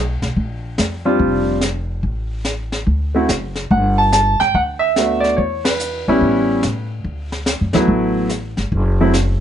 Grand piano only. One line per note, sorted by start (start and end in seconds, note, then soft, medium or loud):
1.05 1.59 G3 medium
1.05 1.59 C4 medium
1.05 1.59 D4 medium
1.05 1.59 F4 medium
3.15 3.28 A3 medium
3.15 3.28 C4 medium
3.15 3.28 E4 medium
3.15 3.28 F#4 medium
3.71 3.99 F#5 medium
3.98 4.11 A5 medium
4.13 4.38 A5 loud
4.40 4.54 G5 loud
4.55 4.61 F#5 medium
4.79 5.24 E5 medium
4.98 5.39 A3 medium
4.98 5.39 B3 soft
4.98 5.39 D4 soft
4.98 5.39 F#4 medium
5.20 5.37 D5 medium
5.36 5.63 C#5 medium
5.65 6.86 B4 medium
6.08 6.61 G3 medium
6.08 6.61 B3 medium
6.08 6.61 C#4 medium
6.08 6.62 E4 medium
7.74 8.28 F#3 medium
7.74 8.28 A3 medium
7.74 8.28 B3 medium
7.74 8.28 E4 medium
9.00 9.13 F#3 medium
9.00 9.13 A3 medium
9.00 9.13 C4 medium
9.00 9.13 E4 medium